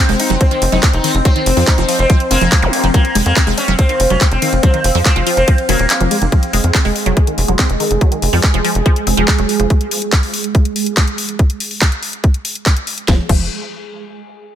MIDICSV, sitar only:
0, 0, Header, 1, 2, 480
1, 0, Start_track
1, 0, Tempo, 422535
1, 1422, Time_signature, 4, 2, 24, 8
1, 16530, End_track
2, 0, Start_track
2, 0, Title_t, "Sitar"
2, 0, Program_c, 0, 104
2, 222, Note_on_c, 0, 63, 96
2, 381, Note_off_c, 0, 63, 0
2, 462, Note_on_c, 0, 60, 94
2, 701, Note_off_c, 0, 60, 0
2, 822, Note_on_c, 0, 63, 90
2, 981, Note_off_c, 0, 63, 0
2, 1062, Note_on_c, 0, 63, 89
2, 1301, Note_off_c, 0, 63, 0
2, 1422, Note_on_c, 0, 60, 94
2, 1740, Note_off_c, 0, 60, 0
2, 1902, Note_on_c, 0, 63, 95
2, 2141, Note_off_c, 0, 63, 0
2, 2262, Note_on_c, 0, 60, 99
2, 2501, Note_off_c, 0, 60, 0
2, 2622, Note_on_c, 0, 58, 102
2, 3246, Note_off_c, 0, 58, 0
2, 3342, Note_on_c, 0, 58, 103
2, 3581, Note_off_c, 0, 58, 0
2, 3702, Note_on_c, 0, 58, 100
2, 3941, Note_off_c, 0, 58, 0
2, 4062, Note_on_c, 0, 61, 91
2, 4221, Note_off_c, 0, 61, 0
2, 4302, Note_on_c, 0, 60, 97
2, 4541, Note_off_c, 0, 60, 0
2, 4662, Note_on_c, 0, 61, 84
2, 4821, Note_off_c, 0, 61, 0
2, 4902, Note_on_c, 0, 60, 96
2, 5141, Note_off_c, 0, 60, 0
2, 5262, Note_on_c, 0, 60, 96
2, 5580, Note_off_c, 0, 60, 0
2, 5742, Note_on_c, 0, 60, 96
2, 5981, Note_off_c, 0, 60, 0
2, 6102, Note_on_c, 0, 60, 100
2, 6341, Note_off_c, 0, 60, 0
2, 6462, Note_on_c, 0, 58, 101
2, 7086, Note_off_c, 0, 58, 0
2, 16530, End_track
0, 0, End_of_file